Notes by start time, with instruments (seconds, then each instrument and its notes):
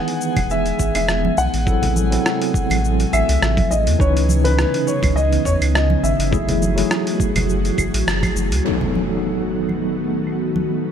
Already playing: tine electric piano D#3 E3 B3 D#4 G#4, ambient pad G#3 B3, synth texture G#4 G#5, grand piano F#5
0.08 open hi-hat
0.21 shaker
0.37 sub bass E1, kick, open hi-hat, high conga, low conga, claves, shaker
0.50 grand piano E5, shaker
0.66 open hi-hat, shaker
0.80 sub bass G#1, kick, shaker
0.95 sub bass E1, grand piano E5, open hi-hat, claves, shaker
1.08 cross-stick, shaker
1.25 high conga
1.38 sub bass B1, grand piano F#5, shaker
1.54 sub bass A1, open hi-hat, shaker
1.66 ambient pad C3 F#3 A3, tine electric piano F#3 C4 E4 A4, kick, shaker
1.83 open hi-hat, low conga, shaker
1.96 high conga, shaker
2.11 tine electric piano F#3 C4 E4 A4, open hi-hat, shaker
2.26 cross-stick, shaker
2.42 open hi-hat
2.54 kick, shaker
2.70 sub bass A1, open hi-hat, high conga, claves, shaker
2.85 shaker
3.00 open hi-hat, shaker
3.13 sub bass A1, grand piano E5, claves, shaker
3.29 sub bass C2, open hi-hat, shaker
3.42 sub bass A1, cross-stick, shaker
3.57 kick, open hi-hat, high conga
3.71 sub bass A1, grand piano D#5, shaker
3.87 sub bass E2, open hi-hat, shaker
3.99 sub bass C#2, ambient pad C#3 E3 B3 D#4, tine electric piano E3 C#4 D#4 B4, grand piano C#5, kick, shaker
4.17 open hi-hat, shaker
4.29 high conga, shaker
4.43 tine electric piano E3 C#4 D#4 B4, grand piano B4, open hi-hat, shaker
4.59 cross-stick, shaker
4.74 open hi-hat
4.87 grand piano C#5, shaker
5.02 sub bass C#2, kick, open hi-hat, high conga, low conga, claves, shaker
5.16 grand piano D#5, shaker
5.33 open hi-hat, shaker
5.45 sub bass E2, grand piano C#5, kick, shaker
5.61 sub bass C#2, open hi-hat, claves, shaker
5.75 grand piano D#5, cross-stick, shaker
5.90 high conga
6.03 sub bass G#1, grand piano E5, shaker
6.19 sub bass F#1, open hi-hat, shaker
6.31 tine electric piano F#3 A3 E4 G#4, ambient pad A3 F#4 G#4, kick, shaker
6.49 open hi-hat, low conga, shaker
6.62 high conga, shaker
6.76 tine electric piano F#3 A3 E4 G#4, open hi-hat, shaker
6.91 cross-stick, shaker
7.07 open hi-hat
7.20 kick, shaker
7.35 sub bass F#1, open hi-hat, high conga, low conga, claves, shaker
7.49 shaker
7.65 open hi-hat, shaker
7.78 sub bass F#1, kick, claves, shaker
7.94 sub bass A1, open hi-hat, shaker
8.07 sub bass F#1, cross-stick, shaker
8.23 kick, open hi-hat, high conga, claves, shaker
8.36 sub bass F#1, shaker
8.51 sub bass C#2, open hi-hat, shaker
8.65 ambient pad D#3 A3 B3 F#4, tine electric piano F#3 B3 D#4 A4, impact
8.81 low conga
8.95 high conga
9.08 tine electric piano F#3 B3 D#4 A4
9.69 high conga, claves
10.27 claves
10.56 high conga